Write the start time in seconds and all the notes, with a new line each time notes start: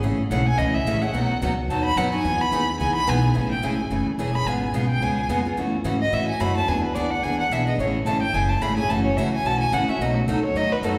0.02 A1 C#3 E3 A3 C#4 G#4
0.30 B1 C#3 E3 A3 C#4 G#4 F#5
0.46 G#5
0.58 C#2 C#3 E3 A3 C#4 G#4 D#5
0.74 E5
0.85 A1 C#3 E3 A3 C#4 G#4
1.01 A3 C#4 G#4 F#5
1.13 B1 B2 F#3 B3 D#4 F#4
1.29 muted upright bass stroke
1.41 C#2 B2 F#3 B3 D#4 F#4
1.68 D#2 B2 F#3 B3 D#4 F#4 A5
1.85 B5
1.96 F#2 B2 F#3 B3 D#4 F#4 F#5
2.12 B3 D#4 F#4 G#5
2.24 E2 E3 B3 D#4 G#4
2.40 B5, muted upright bass stroke
2.52 D#2 E3 B3 D#4 G#4
2.80 C#2 E3 B3 D#4 G#4 G#5
2.96 B5, muted upright bass stroke
3.07 B1 E3 B3 D#4 G#4 G#5
3.22 B3 D#4 G#4
3.34 A1 C#3 E3 A3 C#4 G#4
3.52 G5
3.62 G#1 C#3 E3 A3 C#4 G#4 G#5
3.90 F#1 C#3 E3 A3 C#4 G#4
4.06 muted upright bass stroke
4.18 E1 C#3 E3 A3 C#4 G#4 G#5
4.34 A3 C#4 G#4 B5
4.45 G#1 C#3 G#3 B3 F4 G#4 G#5
4.73 B1 C#3 G#3 B3 F4 G#4
4.90 G5
5.01 C#2 C#3 G#3 B3 F4 G#4 G#5
5.29 F2 C#3 G#3 B3 F4 G#4
5.45 B3 F4 G#4
5.57 F#2 C#3 E3 A3 C#4 F#4
5.84 G#2 C#3 E3 A3 C#4 F#4
6.02 D#5
6.12 A2 C#3 E3 A3 C#4 F#4 E5
6.29 G#5
6.40 F#2 C#3 E3 A3 C#4 F#4 B5
6.55 A3 C#4 F#4 A5
6.68 E2 E3 B3 D4 G#4 G#5
6.83 B4, muted upright bass stroke
6.95 D2 E3 B3 D4 G#4 D5
7.11 F#5
7.23 C#2 E3 B3 D4 G#4 G#5
7.37 F#5, muted upright bass stroke
7.50 B1 E3 B3 D4 G#4 E5
7.67 B3 D4 G#4 D#5
7.78 A1 C#3 E3 A3 C#4 G#4 C#5
8.05 G#1 C#3 E3 A3 C#4 G#4 A5
8.22 G5
8.34 F#1 C#3 E3 A3 C#4 G#4 G#5
8.49 A5
8.61 G#1 C#3 E3 A3 C#4 G#4 B5
8.77 A3 C#4 G#4 G#5
8.89 F#1 C#3 E3 A3 C#4 F#4 A5
9.05 C#5
9.16 C#2 C#3 E3 A3 C#4 F#4 E5
9.32 G#5
9.44 B1 C#3 E3 A3 C#4 F#4 A5
9.61 G#5
9.72 A1 C#3 E3 A3 C#4 F#4 F#5
9.87 A3 C#4 F#4 E5, muted upright bass stroke
9.99 B1 B2 F#3 A3 D#4 F#4 D#5
10.17 F#4
10.26 C#2 B2 F#3 A3 D#4 F#4 A4
10.42 C#5, muted upright bass stroke
10.54 D#2 B2 F#3 A3 D#4 F#4 D#5
10.72 B4
10.82 F#2 B2 F#3 A3 D#4 F#4 A4